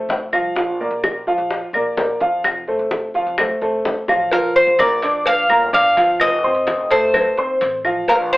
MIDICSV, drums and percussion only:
0, 0, Header, 1, 2, 480
1, 0, Start_track
1, 0, Key_signature, -2, "major"
1, 0, Tempo, 469851
1, 576, Time_signature, 4, 2, 24, 8
1, 8555, End_track
2, 0, Start_track
2, 0, Title_t, "Drums"
2, 91, Note_on_c, 9, 63, 81
2, 102, Note_on_c, 9, 60, 67
2, 102, Note_on_c, 9, 61, 83
2, 193, Note_off_c, 9, 63, 0
2, 204, Note_off_c, 9, 60, 0
2, 204, Note_off_c, 9, 61, 0
2, 337, Note_on_c, 9, 75, 65
2, 439, Note_off_c, 9, 75, 0
2, 576, Note_on_c, 9, 60, 62
2, 580, Note_on_c, 9, 63, 33
2, 678, Note_off_c, 9, 60, 0
2, 683, Note_off_c, 9, 63, 0
2, 817, Note_on_c, 9, 63, 33
2, 919, Note_off_c, 9, 63, 0
2, 1058, Note_on_c, 9, 63, 98
2, 1059, Note_on_c, 9, 75, 65
2, 1060, Note_on_c, 9, 60, 57
2, 1161, Note_off_c, 9, 63, 0
2, 1162, Note_off_c, 9, 60, 0
2, 1162, Note_off_c, 9, 75, 0
2, 1299, Note_on_c, 9, 63, 33
2, 1401, Note_off_c, 9, 63, 0
2, 1537, Note_on_c, 9, 63, 35
2, 1538, Note_on_c, 9, 60, 67
2, 1639, Note_off_c, 9, 63, 0
2, 1640, Note_off_c, 9, 60, 0
2, 1778, Note_on_c, 9, 63, 36
2, 1779, Note_on_c, 9, 75, 59
2, 1881, Note_off_c, 9, 63, 0
2, 1881, Note_off_c, 9, 75, 0
2, 2014, Note_on_c, 9, 63, 85
2, 2018, Note_on_c, 9, 60, 69
2, 2018, Note_on_c, 9, 61, 83
2, 2116, Note_off_c, 9, 63, 0
2, 2120, Note_off_c, 9, 60, 0
2, 2120, Note_off_c, 9, 61, 0
2, 2258, Note_on_c, 9, 63, 81
2, 2360, Note_off_c, 9, 63, 0
2, 2497, Note_on_c, 9, 60, 62
2, 2497, Note_on_c, 9, 63, 32
2, 2501, Note_on_c, 9, 75, 66
2, 2599, Note_off_c, 9, 60, 0
2, 2599, Note_off_c, 9, 63, 0
2, 2604, Note_off_c, 9, 75, 0
2, 2732, Note_on_c, 9, 60, 33
2, 2740, Note_on_c, 9, 63, 34
2, 2834, Note_off_c, 9, 60, 0
2, 2843, Note_off_c, 9, 63, 0
2, 2973, Note_on_c, 9, 60, 56
2, 2974, Note_on_c, 9, 63, 101
2, 3075, Note_off_c, 9, 60, 0
2, 3077, Note_off_c, 9, 63, 0
2, 3211, Note_on_c, 9, 60, 37
2, 3221, Note_on_c, 9, 63, 32
2, 3313, Note_off_c, 9, 60, 0
2, 3323, Note_off_c, 9, 63, 0
2, 3452, Note_on_c, 9, 60, 73
2, 3458, Note_on_c, 9, 75, 65
2, 3462, Note_on_c, 9, 63, 37
2, 3462, Note_on_c, 9, 64, 79
2, 3554, Note_off_c, 9, 60, 0
2, 3560, Note_off_c, 9, 75, 0
2, 3564, Note_off_c, 9, 63, 0
2, 3564, Note_off_c, 9, 64, 0
2, 3696, Note_on_c, 9, 60, 31
2, 3698, Note_on_c, 9, 63, 36
2, 3798, Note_off_c, 9, 60, 0
2, 3800, Note_off_c, 9, 63, 0
2, 3935, Note_on_c, 9, 63, 82
2, 3937, Note_on_c, 9, 60, 70
2, 3937, Note_on_c, 9, 61, 82
2, 4037, Note_off_c, 9, 63, 0
2, 4039, Note_off_c, 9, 60, 0
2, 4039, Note_off_c, 9, 61, 0
2, 4171, Note_on_c, 9, 60, 76
2, 4180, Note_on_c, 9, 75, 65
2, 4273, Note_off_c, 9, 60, 0
2, 4282, Note_off_c, 9, 75, 0
2, 4408, Note_on_c, 9, 56, 99
2, 4418, Note_on_c, 9, 63, 32
2, 4510, Note_off_c, 9, 56, 0
2, 4521, Note_off_c, 9, 63, 0
2, 4658, Note_on_c, 9, 63, 37
2, 4760, Note_off_c, 9, 63, 0
2, 4891, Note_on_c, 9, 56, 64
2, 4894, Note_on_c, 9, 63, 100
2, 4897, Note_on_c, 9, 75, 68
2, 4993, Note_off_c, 9, 56, 0
2, 4996, Note_off_c, 9, 63, 0
2, 4999, Note_off_c, 9, 75, 0
2, 5133, Note_on_c, 9, 56, 73
2, 5133, Note_on_c, 9, 63, 34
2, 5235, Note_off_c, 9, 56, 0
2, 5236, Note_off_c, 9, 63, 0
2, 5370, Note_on_c, 9, 56, 106
2, 5377, Note_on_c, 9, 63, 34
2, 5472, Note_off_c, 9, 56, 0
2, 5479, Note_off_c, 9, 63, 0
2, 5615, Note_on_c, 9, 75, 68
2, 5616, Note_on_c, 9, 63, 38
2, 5718, Note_off_c, 9, 63, 0
2, 5718, Note_off_c, 9, 75, 0
2, 5857, Note_on_c, 9, 63, 84
2, 5861, Note_on_c, 9, 56, 70
2, 5960, Note_off_c, 9, 63, 0
2, 5963, Note_off_c, 9, 56, 0
2, 6100, Note_on_c, 9, 63, 82
2, 6102, Note_on_c, 9, 56, 67
2, 6202, Note_off_c, 9, 63, 0
2, 6204, Note_off_c, 9, 56, 0
2, 6332, Note_on_c, 9, 75, 67
2, 6338, Note_on_c, 9, 63, 34
2, 6342, Note_on_c, 9, 56, 105
2, 6434, Note_off_c, 9, 75, 0
2, 6441, Note_off_c, 9, 63, 0
2, 6444, Note_off_c, 9, 56, 0
2, 6580, Note_on_c, 9, 63, 35
2, 6682, Note_off_c, 9, 63, 0
2, 6812, Note_on_c, 9, 56, 65
2, 6818, Note_on_c, 9, 63, 95
2, 6914, Note_off_c, 9, 56, 0
2, 6921, Note_off_c, 9, 63, 0
2, 7055, Note_on_c, 9, 56, 74
2, 7057, Note_on_c, 9, 63, 33
2, 7157, Note_off_c, 9, 56, 0
2, 7160, Note_off_c, 9, 63, 0
2, 7294, Note_on_c, 9, 56, 105
2, 7296, Note_on_c, 9, 75, 66
2, 7302, Note_on_c, 9, 63, 35
2, 7302, Note_on_c, 9, 64, 81
2, 7396, Note_off_c, 9, 56, 0
2, 7398, Note_off_c, 9, 75, 0
2, 7404, Note_off_c, 9, 63, 0
2, 7404, Note_off_c, 9, 64, 0
2, 7541, Note_on_c, 9, 63, 37
2, 7644, Note_off_c, 9, 63, 0
2, 7775, Note_on_c, 9, 56, 68
2, 7779, Note_on_c, 9, 63, 80
2, 7877, Note_off_c, 9, 56, 0
2, 7882, Note_off_c, 9, 63, 0
2, 8016, Note_on_c, 9, 75, 65
2, 8118, Note_off_c, 9, 75, 0
2, 8258, Note_on_c, 9, 56, 108
2, 8262, Note_on_c, 9, 63, 34
2, 8360, Note_off_c, 9, 56, 0
2, 8364, Note_off_c, 9, 63, 0
2, 8503, Note_on_c, 9, 63, 34
2, 8555, Note_off_c, 9, 63, 0
2, 8555, End_track
0, 0, End_of_file